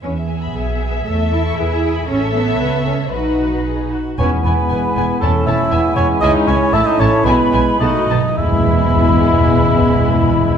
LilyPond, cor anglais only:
\new Staff \with { instrumentName = "Cor anglais" } { \time 2/4 \key e \major \tempo 4 = 114 r2 | r2 | r2 | r2 |
cis''8 b'4. | a'8 e''4 cis''8 | dis''8 cis''8 e''16 dis''16 cis''8 | b'4 dis''4 |
e''2~ | e''2 | }